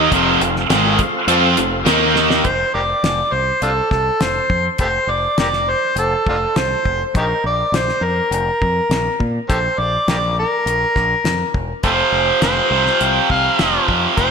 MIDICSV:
0, 0, Header, 1, 6, 480
1, 0, Start_track
1, 0, Key_signature, -1, "major"
1, 0, Tempo, 585938
1, 93, Time_signature, 4, 2, 24, 8
1, 11722, End_track
2, 0, Start_track
2, 0, Title_t, "Harmonica"
2, 0, Program_c, 0, 22
2, 2006, Note_on_c, 0, 72, 98
2, 2229, Note_off_c, 0, 72, 0
2, 2247, Note_on_c, 0, 67, 64
2, 2247, Note_on_c, 0, 70, 64
2, 2247, Note_on_c, 0, 74, 92
2, 2298, Note_off_c, 0, 70, 0
2, 2315, Note_off_c, 0, 67, 0
2, 2470, Note_off_c, 0, 74, 0
2, 2494, Note_on_c, 0, 74, 97
2, 2729, Note_on_c, 0, 72, 89
2, 2741, Note_off_c, 0, 74, 0
2, 2968, Note_off_c, 0, 72, 0
2, 2972, Note_on_c, 0, 62, 60
2, 2972, Note_on_c, 0, 65, 60
2, 2972, Note_on_c, 0, 69, 85
2, 3024, Note_off_c, 0, 62, 0
2, 3042, Note_off_c, 0, 65, 0
2, 3193, Note_off_c, 0, 69, 0
2, 3210, Note_on_c, 0, 69, 77
2, 3458, Note_on_c, 0, 72, 93
2, 3470, Note_off_c, 0, 69, 0
2, 3814, Note_off_c, 0, 72, 0
2, 3940, Note_on_c, 0, 67, 66
2, 3940, Note_on_c, 0, 69, 66
2, 3940, Note_on_c, 0, 72, 94
2, 3990, Note_off_c, 0, 69, 0
2, 3993, Note_off_c, 0, 67, 0
2, 4179, Note_on_c, 0, 74, 90
2, 4192, Note_off_c, 0, 72, 0
2, 4415, Note_off_c, 0, 74, 0
2, 4420, Note_on_c, 0, 67, 63
2, 4420, Note_on_c, 0, 70, 63
2, 4420, Note_on_c, 0, 74, 89
2, 4483, Note_off_c, 0, 70, 0
2, 4494, Note_off_c, 0, 67, 0
2, 4666, Note_on_c, 0, 72, 91
2, 4678, Note_off_c, 0, 74, 0
2, 4899, Note_off_c, 0, 72, 0
2, 4905, Note_on_c, 0, 69, 81
2, 5123, Note_off_c, 0, 69, 0
2, 5153, Note_on_c, 0, 62, 56
2, 5153, Note_on_c, 0, 65, 56
2, 5153, Note_on_c, 0, 69, 80
2, 5212, Note_off_c, 0, 62, 0
2, 5219, Note_off_c, 0, 65, 0
2, 5394, Note_on_c, 0, 72, 93
2, 5406, Note_off_c, 0, 69, 0
2, 5745, Note_off_c, 0, 72, 0
2, 5877, Note_on_c, 0, 63, 59
2, 5877, Note_on_c, 0, 67, 59
2, 5877, Note_on_c, 0, 70, 85
2, 5929, Note_off_c, 0, 67, 0
2, 5944, Note_off_c, 0, 63, 0
2, 6091, Note_off_c, 0, 70, 0
2, 6114, Note_on_c, 0, 74, 87
2, 6356, Note_on_c, 0, 72, 88
2, 6368, Note_off_c, 0, 74, 0
2, 6583, Note_on_c, 0, 70, 81
2, 6596, Note_off_c, 0, 72, 0
2, 6821, Note_off_c, 0, 70, 0
2, 6829, Note_on_c, 0, 70, 77
2, 7512, Note_off_c, 0, 70, 0
2, 7781, Note_on_c, 0, 67, 62
2, 7781, Note_on_c, 0, 69, 62
2, 7781, Note_on_c, 0, 72, 89
2, 7848, Note_off_c, 0, 67, 0
2, 7849, Note_off_c, 0, 69, 0
2, 8018, Note_on_c, 0, 74, 94
2, 8031, Note_off_c, 0, 72, 0
2, 8259, Note_off_c, 0, 74, 0
2, 8271, Note_on_c, 0, 67, 68
2, 8271, Note_on_c, 0, 70, 68
2, 8271, Note_on_c, 0, 74, 97
2, 8326, Note_off_c, 0, 70, 0
2, 8334, Note_off_c, 0, 67, 0
2, 8489, Note_off_c, 0, 74, 0
2, 8515, Note_on_c, 0, 70, 90
2, 9433, Note_off_c, 0, 70, 0
2, 9704, Note_on_c, 0, 67, 56
2, 9704, Note_on_c, 0, 69, 56
2, 9704, Note_on_c, 0, 72, 80
2, 9757, Note_off_c, 0, 69, 0
2, 9774, Note_off_c, 0, 67, 0
2, 10148, Note_off_c, 0, 72, 0
2, 10183, Note_on_c, 0, 72, 85
2, 10671, Note_on_c, 0, 79, 94
2, 10684, Note_off_c, 0, 72, 0
2, 10899, Note_off_c, 0, 79, 0
2, 10904, Note_on_c, 0, 77, 91
2, 11346, Note_off_c, 0, 77, 0
2, 11611, Note_on_c, 0, 72, 91
2, 11722, Note_off_c, 0, 72, 0
2, 11722, End_track
3, 0, Start_track
3, 0, Title_t, "Tonewheel organ"
3, 0, Program_c, 1, 16
3, 0, Note_on_c, 1, 63, 71
3, 0, Note_on_c, 1, 70, 72
3, 0, Note_on_c, 1, 75, 73
3, 93, Note_off_c, 1, 63, 0
3, 93, Note_off_c, 1, 70, 0
3, 97, Note_off_c, 1, 75, 0
3, 103, Note_on_c, 1, 60, 67
3, 103, Note_on_c, 1, 69, 67
3, 105, Note_on_c, 1, 77, 70
3, 110, Note_on_c, 1, 65, 67
3, 1518, Note_off_c, 1, 60, 0
3, 1519, Note_off_c, 1, 69, 0
3, 1520, Note_off_c, 1, 77, 0
3, 1522, Note_off_c, 1, 65, 0
3, 1522, Note_on_c, 1, 75, 69
3, 1524, Note_on_c, 1, 70, 70
3, 1528, Note_on_c, 1, 63, 68
3, 1999, Note_off_c, 1, 75, 0
3, 2000, Note_off_c, 1, 70, 0
3, 2002, Note_off_c, 1, 63, 0
3, 11722, End_track
4, 0, Start_track
4, 0, Title_t, "Distorted electric guitar"
4, 0, Program_c, 2, 30
4, 0, Note_on_c, 2, 51, 91
4, 0, Note_on_c, 2, 58, 89
4, 0, Note_on_c, 2, 63, 99
4, 87, Note_off_c, 2, 51, 0
4, 88, Note_off_c, 2, 58, 0
4, 90, Note_off_c, 2, 63, 0
4, 93, Note_on_c, 2, 41, 92
4, 101, Note_on_c, 2, 48, 96
4, 104, Note_on_c, 2, 53, 111
4, 325, Note_off_c, 2, 41, 0
4, 329, Note_off_c, 2, 48, 0
4, 331, Note_off_c, 2, 53, 0
4, 336, Note_on_c, 2, 41, 60
4, 339, Note_on_c, 2, 48, 71
4, 525, Note_off_c, 2, 41, 0
4, 527, Note_off_c, 2, 48, 0
4, 573, Note_on_c, 2, 44, 96
4, 577, Note_on_c, 2, 51, 96
4, 581, Note_on_c, 2, 56, 94
4, 804, Note_off_c, 2, 44, 0
4, 806, Note_off_c, 2, 51, 0
4, 808, Note_off_c, 2, 56, 0
4, 1053, Note_on_c, 2, 53, 89
4, 1055, Note_on_c, 2, 60, 88
4, 1061, Note_on_c, 2, 65, 98
4, 1283, Note_off_c, 2, 53, 0
4, 1284, Note_off_c, 2, 60, 0
4, 1287, Note_off_c, 2, 65, 0
4, 1292, Note_on_c, 2, 41, 60
4, 1297, Note_on_c, 2, 48, 65
4, 1482, Note_off_c, 2, 41, 0
4, 1484, Note_off_c, 2, 48, 0
4, 1526, Note_on_c, 2, 51, 96
4, 1534, Note_on_c, 2, 58, 102
4, 1536, Note_on_c, 2, 63, 101
4, 1999, Note_off_c, 2, 51, 0
4, 2003, Note_off_c, 2, 58, 0
4, 2004, Note_off_c, 2, 63, 0
4, 9699, Note_on_c, 2, 41, 80
4, 9713, Note_on_c, 2, 48, 86
4, 9724, Note_on_c, 2, 53, 93
4, 10409, Note_off_c, 2, 48, 0
4, 10417, Note_off_c, 2, 53, 0
4, 10420, Note_on_c, 2, 53, 77
4, 10432, Note_on_c, 2, 48, 71
4, 10440, Note_off_c, 2, 41, 0
4, 10443, Note_on_c, 2, 41, 62
4, 11122, Note_off_c, 2, 41, 0
4, 11122, Note_off_c, 2, 53, 0
4, 11128, Note_off_c, 2, 48, 0
4, 11132, Note_on_c, 2, 41, 70
4, 11143, Note_on_c, 2, 48, 79
4, 11152, Note_on_c, 2, 53, 83
4, 11597, Note_off_c, 2, 41, 0
4, 11603, Note_off_c, 2, 48, 0
4, 11607, Note_off_c, 2, 53, 0
4, 11612, Note_on_c, 2, 41, 82
4, 11619, Note_on_c, 2, 48, 88
4, 11632, Note_on_c, 2, 53, 99
4, 11722, Note_off_c, 2, 41, 0
4, 11722, Note_off_c, 2, 48, 0
4, 11722, Note_off_c, 2, 53, 0
4, 11722, End_track
5, 0, Start_track
5, 0, Title_t, "Fingered electric bass"
5, 0, Program_c, 3, 33
5, 96, Note_on_c, 3, 29, 97
5, 317, Note_off_c, 3, 29, 0
5, 334, Note_on_c, 3, 29, 77
5, 555, Note_off_c, 3, 29, 0
5, 574, Note_on_c, 3, 32, 96
5, 795, Note_off_c, 3, 32, 0
5, 1044, Note_on_c, 3, 41, 98
5, 1269, Note_off_c, 3, 41, 0
5, 1294, Note_on_c, 3, 29, 89
5, 1514, Note_off_c, 3, 29, 0
5, 1523, Note_on_c, 3, 39, 89
5, 1972, Note_off_c, 3, 39, 0
5, 2004, Note_on_c, 3, 29, 81
5, 2150, Note_off_c, 3, 29, 0
5, 2249, Note_on_c, 3, 29, 86
5, 2393, Note_off_c, 3, 29, 0
5, 2484, Note_on_c, 3, 29, 84
5, 2630, Note_off_c, 3, 29, 0
5, 2721, Note_on_c, 3, 36, 79
5, 2868, Note_off_c, 3, 36, 0
5, 2964, Note_on_c, 3, 36, 85
5, 3110, Note_off_c, 3, 36, 0
5, 3203, Note_on_c, 3, 36, 86
5, 3350, Note_off_c, 3, 36, 0
5, 3445, Note_on_c, 3, 29, 80
5, 3591, Note_off_c, 3, 29, 0
5, 3684, Note_on_c, 3, 41, 75
5, 3831, Note_off_c, 3, 41, 0
5, 3924, Note_on_c, 3, 29, 84
5, 4072, Note_off_c, 3, 29, 0
5, 4155, Note_on_c, 3, 29, 78
5, 4305, Note_off_c, 3, 29, 0
5, 4404, Note_on_c, 3, 29, 87
5, 4697, Note_off_c, 3, 29, 0
5, 4881, Note_on_c, 3, 29, 85
5, 5030, Note_off_c, 3, 29, 0
5, 5135, Note_on_c, 3, 29, 93
5, 5280, Note_off_c, 3, 29, 0
5, 5374, Note_on_c, 3, 36, 83
5, 5520, Note_off_c, 3, 36, 0
5, 5612, Note_on_c, 3, 29, 83
5, 5759, Note_off_c, 3, 29, 0
5, 5851, Note_on_c, 3, 34, 93
5, 5998, Note_off_c, 3, 34, 0
5, 6094, Note_on_c, 3, 34, 84
5, 6240, Note_off_c, 3, 34, 0
5, 6325, Note_on_c, 3, 34, 87
5, 6474, Note_off_c, 3, 34, 0
5, 6563, Note_on_c, 3, 41, 88
5, 6713, Note_off_c, 3, 41, 0
5, 6807, Note_on_c, 3, 29, 90
5, 6956, Note_off_c, 3, 29, 0
5, 7056, Note_on_c, 3, 41, 92
5, 7202, Note_off_c, 3, 41, 0
5, 7286, Note_on_c, 3, 34, 81
5, 7435, Note_off_c, 3, 34, 0
5, 7534, Note_on_c, 3, 46, 78
5, 7681, Note_off_c, 3, 46, 0
5, 7776, Note_on_c, 3, 34, 88
5, 7922, Note_off_c, 3, 34, 0
5, 8013, Note_on_c, 3, 34, 82
5, 8160, Note_off_c, 3, 34, 0
5, 8255, Note_on_c, 3, 34, 88
5, 8547, Note_off_c, 3, 34, 0
5, 8732, Note_on_c, 3, 34, 84
5, 8879, Note_off_c, 3, 34, 0
5, 8975, Note_on_c, 3, 34, 89
5, 9121, Note_off_c, 3, 34, 0
5, 9211, Note_on_c, 3, 41, 79
5, 9358, Note_off_c, 3, 41, 0
5, 9455, Note_on_c, 3, 28, 81
5, 9601, Note_off_c, 3, 28, 0
5, 9694, Note_on_c, 3, 29, 84
5, 9840, Note_off_c, 3, 29, 0
5, 9930, Note_on_c, 3, 29, 83
5, 10078, Note_off_c, 3, 29, 0
5, 10171, Note_on_c, 3, 29, 86
5, 10318, Note_off_c, 3, 29, 0
5, 10409, Note_on_c, 3, 36, 81
5, 10556, Note_off_c, 3, 36, 0
5, 10656, Note_on_c, 3, 36, 86
5, 10801, Note_off_c, 3, 36, 0
5, 10894, Note_on_c, 3, 36, 91
5, 11039, Note_off_c, 3, 36, 0
5, 11139, Note_on_c, 3, 29, 83
5, 11282, Note_off_c, 3, 29, 0
5, 11371, Note_on_c, 3, 41, 79
5, 11517, Note_off_c, 3, 41, 0
5, 11610, Note_on_c, 3, 29, 86
5, 11722, Note_off_c, 3, 29, 0
5, 11722, End_track
6, 0, Start_track
6, 0, Title_t, "Drums"
6, 97, Note_on_c, 9, 36, 112
6, 98, Note_on_c, 9, 42, 94
6, 179, Note_off_c, 9, 36, 0
6, 180, Note_off_c, 9, 42, 0
6, 340, Note_on_c, 9, 42, 75
6, 422, Note_off_c, 9, 42, 0
6, 459, Note_on_c, 9, 38, 31
6, 541, Note_off_c, 9, 38, 0
6, 575, Note_on_c, 9, 42, 97
6, 576, Note_on_c, 9, 38, 110
6, 657, Note_off_c, 9, 42, 0
6, 658, Note_off_c, 9, 38, 0
6, 809, Note_on_c, 9, 42, 68
6, 811, Note_on_c, 9, 36, 85
6, 891, Note_off_c, 9, 42, 0
6, 893, Note_off_c, 9, 36, 0
6, 1049, Note_on_c, 9, 42, 89
6, 1131, Note_off_c, 9, 42, 0
6, 1288, Note_on_c, 9, 42, 69
6, 1370, Note_off_c, 9, 42, 0
6, 1528, Note_on_c, 9, 42, 88
6, 1529, Note_on_c, 9, 38, 110
6, 1610, Note_off_c, 9, 42, 0
6, 1611, Note_off_c, 9, 38, 0
6, 1767, Note_on_c, 9, 38, 65
6, 1849, Note_off_c, 9, 38, 0
6, 1888, Note_on_c, 9, 38, 88
6, 1970, Note_off_c, 9, 38, 0
6, 2004, Note_on_c, 9, 42, 55
6, 2006, Note_on_c, 9, 36, 97
6, 2086, Note_off_c, 9, 42, 0
6, 2088, Note_off_c, 9, 36, 0
6, 2489, Note_on_c, 9, 42, 62
6, 2490, Note_on_c, 9, 38, 103
6, 2571, Note_off_c, 9, 42, 0
6, 2572, Note_off_c, 9, 38, 0
6, 2965, Note_on_c, 9, 42, 57
6, 3047, Note_off_c, 9, 42, 0
6, 3205, Note_on_c, 9, 36, 78
6, 3208, Note_on_c, 9, 38, 31
6, 3287, Note_off_c, 9, 36, 0
6, 3290, Note_off_c, 9, 38, 0
6, 3445, Note_on_c, 9, 42, 60
6, 3446, Note_on_c, 9, 38, 100
6, 3527, Note_off_c, 9, 42, 0
6, 3528, Note_off_c, 9, 38, 0
6, 3685, Note_on_c, 9, 36, 77
6, 3767, Note_off_c, 9, 36, 0
6, 3919, Note_on_c, 9, 42, 55
6, 3924, Note_on_c, 9, 36, 98
6, 4001, Note_off_c, 9, 42, 0
6, 4006, Note_off_c, 9, 36, 0
6, 4405, Note_on_c, 9, 42, 58
6, 4406, Note_on_c, 9, 38, 106
6, 4487, Note_off_c, 9, 42, 0
6, 4488, Note_off_c, 9, 38, 0
6, 4530, Note_on_c, 9, 38, 30
6, 4612, Note_off_c, 9, 38, 0
6, 4887, Note_on_c, 9, 42, 54
6, 4969, Note_off_c, 9, 42, 0
6, 5132, Note_on_c, 9, 36, 84
6, 5214, Note_off_c, 9, 36, 0
6, 5375, Note_on_c, 9, 42, 53
6, 5376, Note_on_c, 9, 38, 102
6, 5457, Note_off_c, 9, 42, 0
6, 5458, Note_off_c, 9, 38, 0
6, 5615, Note_on_c, 9, 36, 80
6, 5697, Note_off_c, 9, 36, 0
6, 5857, Note_on_c, 9, 36, 105
6, 5857, Note_on_c, 9, 42, 51
6, 5939, Note_off_c, 9, 36, 0
6, 5939, Note_off_c, 9, 42, 0
6, 6340, Note_on_c, 9, 42, 60
6, 6341, Note_on_c, 9, 38, 99
6, 6422, Note_off_c, 9, 42, 0
6, 6423, Note_off_c, 9, 38, 0
6, 6459, Note_on_c, 9, 38, 30
6, 6541, Note_off_c, 9, 38, 0
6, 6818, Note_on_c, 9, 42, 59
6, 6900, Note_off_c, 9, 42, 0
6, 7059, Note_on_c, 9, 36, 81
6, 7141, Note_off_c, 9, 36, 0
6, 7300, Note_on_c, 9, 42, 60
6, 7301, Note_on_c, 9, 38, 101
6, 7382, Note_off_c, 9, 42, 0
6, 7383, Note_off_c, 9, 38, 0
6, 7539, Note_on_c, 9, 36, 82
6, 7621, Note_off_c, 9, 36, 0
6, 7779, Note_on_c, 9, 36, 104
6, 7780, Note_on_c, 9, 42, 63
6, 7861, Note_off_c, 9, 36, 0
6, 7862, Note_off_c, 9, 42, 0
6, 8259, Note_on_c, 9, 38, 101
6, 8259, Note_on_c, 9, 42, 60
6, 8341, Note_off_c, 9, 38, 0
6, 8341, Note_off_c, 9, 42, 0
6, 8742, Note_on_c, 9, 42, 55
6, 8824, Note_off_c, 9, 42, 0
6, 8978, Note_on_c, 9, 36, 81
6, 8978, Note_on_c, 9, 38, 31
6, 9060, Note_off_c, 9, 36, 0
6, 9060, Note_off_c, 9, 38, 0
6, 9217, Note_on_c, 9, 42, 53
6, 9218, Note_on_c, 9, 38, 94
6, 9299, Note_off_c, 9, 42, 0
6, 9300, Note_off_c, 9, 38, 0
6, 9457, Note_on_c, 9, 36, 80
6, 9539, Note_off_c, 9, 36, 0
6, 9694, Note_on_c, 9, 42, 56
6, 9697, Note_on_c, 9, 36, 98
6, 9776, Note_off_c, 9, 42, 0
6, 9779, Note_off_c, 9, 36, 0
6, 10174, Note_on_c, 9, 38, 102
6, 10174, Note_on_c, 9, 42, 56
6, 10255, Note_off_c, 9, 42, 0
6, 10256, Note_off_c, 9, 38, 0
6, 10536, Note_on_c, 9, 38, 32
6, 10618, Note_off_c, 9, 38, 0
6, 10654, Note_on_c, 9, 42, 57
6, 10736, Note_off_c, 9, 42, 0
6, 10895, Note_on_c, 9, 36, 78
6, 10977, Note_off_c, 9, 36, 0
6, 11134, Note_on_c, 9, 42, 54
6, 11135, Note_on_c, 9, 38, 101
6, 11216, Note_off_c, 9, 38, 0
6, 11216, Note_off_c, 9, 42, 0
6, 11374, Note_on_c, 9, 36, 77
6, 11456, Note_off_c, 9, 36, 0
6, 11612, Note_on_c, 9, 42, 61
6, 11613, Note_on_c, 9, 36, 104
6, 11694, Note_off_c, 9, 42, 0
6, 11695, Note_off_c, 9, 36, 0
6, 11722, End_track
0, 0, End_of_file